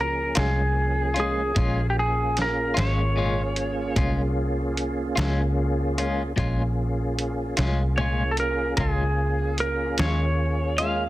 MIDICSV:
0, 0, Header, 1, 6, 480
1, 0, Start_track
1, 0, Key_signature, -5, "minor"
1, 0, Tempo, 801068
1, 939, Time_signature, 12, 3, 24, 8
1, 6647, End_track
2, 0, Start_track
2, 0, Title_t, "Electric slide guitar"
2, 0, Program_c, 0, 29
2, 4, Note_on_c, 0, 70, 64
2, 233, Note_on_c, 0, 68, 68
2, 238, Note_off_c, 0, 70, 0
2, 710, Note_off_c, 0, 68, 0
2, 717, Note_on_c, 0, 68, 74
2, 1136, Note_off_c, 0, 68, 0
2, 1138, Note_on_c, 0, 67, 50
2, 1179, Note_off_c, 0, 67, 0
2, 1194, Note_on_c, 0, 68, 73
2, 1433, Note_off_c, 0, 68, 0
2, 1448, Note_on_c, 0, 70, 70
2, 1672, Note_on_c, 0, 73, 69
2, 1680, Note_off_c, 0, 70, 0
2, 2361, Note_off_c, 0, 73, 0
2, 4779, Note_on_c, 0, 73, 67
2, 4982, Note_off_c, 0, 73, 0
2, 4982, Note_on_c, 0, 69, 53
2, 5021, Note_off_c, 0, 69, 0
2, 5032, Note_on_c, 0, 70, 78
2, 5252, Note_off_c, 0, 70, 0
2, 5254, Note_on_c, 0, 68, 63
2, 5750, Note_off_c, 0, 68, 0
2, 5754, Note_on_c, 0, 70, 72
2, 5988, Note_on_c, 0, 73, 70
2, 5992, Note_off_c, 0, 70, 0
2, 6461, Note_on_c, 0, 77, 81
2, 6476, Note_off_c, 0, 73, 0
2, 6647, Note_off_c, 0, 77, 0
2, 6647, End_track
3, 0, Start_track
3, 0, Title_t, "Clean electric guitar"
3, 0, Program_c, 1, 27
3, 211, Note_on_c, 1, 65, 42
3, 224, Note_on_c, 1, 61, 38
3, 231, Note_on_c, 1, 56, 36
3, 359, Note_off_c, 1, 65, 0
3, 365, Note_off_c, 1, 61, 0
3, 369, Note_off_c, 1, 56, 0
3, 684, Note_on_c, 1, 65, 40
3, 696, Note_on_c, 1, 61, 35
3, 704, Note_on_c, 1, 56, 33
3, 835, Note_off_c, 1, 65, 0
3, 841, Note_off_c, 1, 61, 0
3, 845, Note_off_c, 1, 56, 0
3, 929, Note_on_c, 1, 46, 56
3, 933, Note_on_c, 1, 56, 58
3, 939, Note_on_c, 1, 61, 66
3, 945, Note_on_c, 1, 65, 71
3, 1078, Note_off_c, 1, 46, 0
3, 1080, Note_off_c, 1, 56, 0
3, 1083, Note_off_c, 1, 61, 0
3, 1086, Note_off_c, 1, 65, 0
3, 1643, Note_on_c, 1, 65, 43
3, 1655, Note_on_c, 1, 61, 42
3, 1661, Note_on_c, 1, 56, 40
3, 1795, Note_off_c, 1, 65, 0
3, 1801, Note_off_c, 1, 61, 0
3, 1804, Note_off_c, 1, 56, 0
3, 1893, Note_on_c, 1, 46, 51
3, 1902, Note_on_c, 1, 56, 52
3, 1906, Note_on_c, 1, 61, 55
3, 1908, Note_on_c, 1, 65, 58
3, 2040, Note_off_c, 1, 46, 0
3, 2044, Note_off_c, 1, 56, 0
3, 2046, Note_off_c, 1, 61, 0
3, 2047, Note_off_c, 1, 65, 0
3, 2373, Note_on_c, 1, 46, 67
3, 2375, Note_on_c, 1, 56, 74
3, 2379, Note_on_c, 1, 61, 68
3, 2384, Note_on_c, 1, 65, 77
3, 2520, Note_off_c, 1, 46, 0
3, 2521, Note_off_c, 1, 56, 0
3, 2523, Note_off_c, 1, 61, 0
3, 2525, Note_off_c, 1, 65, 0
3, 3090, Note_on_c, 1, 65, 58
3, 3101, Note_on_c, 1, 61, 52
3, 3109, Note_on_c, 1, 56, 41
3, 3238, Note_off_c, 1, 65, 0
3, 3244, Note_off_c, 1, 61, 0
3, 3248, Note_off_c, 1, 56, 0
3, 3583, Note_on_c, 1, 65, 51
3, 3591, Note_on_c, 1, 61, 43
3, 3596, Note_on_c, 1, 56, 42
3, 3725, Note_off_c, 1, 65, 0
3, 3729, Note_off_c, 1, 61, 0
3, 3731, Note_off_c, 1, 56, 0
3, 3812, Note_on_c, 1, 46, 65
3, 3820, Note_on_c, 1, 56, 72
3, 3822, Note_on_c, 1, 61, 76
3, 3829, Note_on_c, 1, 65, 67
3, 3959, Note_off_c, 1, 46, 0
3, 3963, Note_off_c, 1, 56, 0
3, 3964, Note_off_c, 1, 61, 0
3, 3967, Note_off_c, 1, 65, 0
3, 4535, Note_on_c, 1, 65, 50
3, 4543, Note_on_c, 1, 61, 43
3, 4555, Note_on_c, 1, 56, 43
3, 4681, Note_off_c, 1, 65, 0
3, 4684, Note_off_c, 1, 61, 0
3, 4691, Note_off_c, 1, 56, 0
3, 4778, Note_on_c, 1, 46, 50
3, 4786, Note_on_c, 1, 56, 52
3, 4786, Note_on_c, 1, 61, 52
3, 4798, Note_on_c, 1, 65, 59
3, 4922, Note_off_c, 1, 46, 0
3, 4926, Note_off_c, 1, 56, 0
3, 4926, Note_off_c, 1, 61, 0
3, 4932, Note_off_c, 1, 65, 0
3, 5262, Note_on_c, 1, 46, 62
3, 5270, Note_on_c, 1, 56, 62
3, 5271, Note_on_c, 1, 61, 59
3, 5276, Note_on_c, 1, 65, 67
3, 5404, Note_off_c, 1, 46, 0
3, 5408, Note_off_c, 1, 56, 0
3, 5408, Note_off_c, 1, 61, 0
3, 5411, Note_off_c, 1, 65, 0
3, 5989, Note_on_c, 1, 65, 43
3, 5997, Note_on_c, 1, 61, 39
3, 6012, Note_on_c, 1, 56, 37
3, 6127, Note_off_c, 1, 65, 0
3, 6131, Note_off_c, 1, 61, 0
3, 6138, Note_off_c, 1, 56, 0
3, 6469, Note_on_c, 1, 65, 42
3, 6479, Note_on_c, 1, 61, 38
3, 6482, Note_on_c, 1, 56, 40
3, 6606, Note_off_c, 1, 65, 0
3, 6611, Note_off_c, 1, 61, 0
3, 6613, Note_off_c, 1, 56, 0
3, 6647, End_track
4, 0, Start_track
4, 0, Title_t, "Tonewheel organ"
4, 0, Program_c, 2, 16
4, 0, Note_on_c, 2, 53, 60
4, 0, Note_on_c, 2, 58, 60
4, 0, Note_on_c, 2, 61, 60
4, 0, Note_on_c, 2, 68, 58
4, 912, Note_off_c, 2, 68, 0
4, 915, Note_off_c, 2, 53, 0
4, 916, Note_off_c, 2, 61, 0
4, 917, Note_off_c, 2, 58, 0
4, 921, Note_on_c, 2, 65, 60
4, 927, Note_on_c, 2, 58, 62
4, 3785, Note_off_c, 2, 65, 0
4, 3789, Note_off_c, 2, 58, 0
4, 3818, Note_on_c, 2, 58, 63
4, 3821, Note_on_c, 2, 61, 63
4, 3821, Note_on_c, 2, 65, 56
4, 3821, Note_on_c, 2, 68, 63
4, 6647, Note_off_c, 2, 58, 0
4, 6647, Note_off_c, 2, 61, 0
4, 6647, Note_off_c, 2, 65, 0
4, 6647, Note_off_c, 2, 68, 0
4, 6647, End_track
5, 0, Start_track
5, 0, Title_t, "Fingered electric bass"
5, 0, Program_c, 3, 33
5, 0, Note_on_c, 3, 37, 65
5, 197, Note_off_c, 3, 37, 0
5, 221, Note_on_c, 3, 36, 79
5, 918, Note_off_c, 3, 36, 0
5, 938, Note_on_c, 3, 34, 66
5, 1637, Note_off_c, 3, 34, 0
5, 1662, Note_on_c, 3, 32, 78
5, 2359, Note_off_c, 3, 32, 0
5, 2377, Note_on_c, 3, 36, 66
5, 3076, Note_off_c, 3, 36, 0
5, 3101, Note_on_c, 3, 37, 78
5, 3798, Note_off_c, 3, 37, 0
5, 3819, Note_on_c, 3, 34, 66
5, 4517, Note_off_c, 3, 34, 0
5, 4543, Note_on_c, 3, 36, 77
5, 5239, Note_off_c, 3, 36, 0
5, 5258, Note_on_c, 3, 37, 69
5, 5955, Note_off_c, 3, 37, 0
5, 5985, Note_on_c, 3, 39, 75
5, 6647, Note_off_c, 3, 39, 0
5, 6647, End_track
6, 0, Start_track
6, 0, Title_t, "Drums"
6, 211, Note_on_c, 9, 42, 68
6, 221, Note_on_c, 9, 38, 82
6, 270, Note_off_c, 9, 42, 0
6, 281, Note_off_c, 9, 38, 0
6, 694, Note_on_c, 9, 42, 43
6, 754, Note_off_c, 9, 42, 0
6, 934, Note_on_c, 9, 42, 56
6, 936, Note_on_c, 9, 36, 73
6, 994, Note_off_c, 9, 42, 0
6, 996, Note_off_c, 9, 36, 0
6, 1419, Note_on_c, 9, 42, 44
6, 1429, Note_on_c, 9, 38, 27
6, 1479, Note_off_c, 9, 42, 0
6, 1489, Note_off_c, 9, 38, 0
6, 1659, Note_on_c, 9, 42, 58
6, 1669, Note_on_c, 9, 38, 77
6, 1719, Note_off_c, 9, 42, 0
6, 1729, Note_off_c, 9, 38, 0
6, 2135, Note_on_c, 9, 42, 51
6, 2195, Note_off_c, 9, 42, 0
6, 2375, Note_on_c, 9, 36, 93
6, 2375, Note_on_c, 9, 42, 67
6, 2435, Note_off_c, 9, 36, 0
6, 2435, Note_off_c, 9, 42, 0
6, 2861, Note_on_c, 9, 42, 56
6, 2921, Note_off_c, 9, 42, 0
6, 3099, Note_on_c, 9, 42, 72
6, 3110, Note_on_c, 9, 38, 92
6, 3159, Note_off_c, 9, 42, 0
6, 3170, Note_off_c, 9, 38, 0
6, 3584, Note_on_c, 9, 42, 52
6, 3644, Note_off_c, 9, 42, 0
6, 3821, Note_on_c, 9, 36, 82
6, 3821, Note_on_c, 9, 42, 58
6, 3880, Note_off_c, 9, 36, 0
6, 3881, Note_off_c, 9, 42, 0
6, 4306, Note_on_c, 9, 42, 47
6, 4366, Note_off_c, 9, 42, 0
6, 4536, Note_on_c, 9, 42, 65
6, 4546, Note_on_c, 9, 38, 74
6, 4596, Note_off_c, 9, 42, 0
6, 4606, Note_off_c, 9, 38, 0
6, 5016, Note_on_c, 9, 42, 53
6, 5076, Note_off_c, 9, 42, 0
6, 5255, Note_on_c, 9, 42, 62
6, 5259, Note_on_c, 9, 36, 90
6, 5315, Note_off_c, 9, 42, 0
6, 5319, Note_off_c, 9, 36, 0
6, 5740, Note_on_c, 9, 42, 52
6, 5800, Note_off_c, 9, 42, 0
6, 5978, Note_on_c, 9, 42, 67
6, 5989, Note_on_c, 9, 38, 89
6, 6038, Note_off_c, 9, 42, 0
6, 6049, Note_off_c, 9, 38, 0
6, 6460, Note_on_c, 9, 42, 47
6, 6520, Note_off_c, 9, 42, 0
6, 6647, End_track
0, 0, End_of_file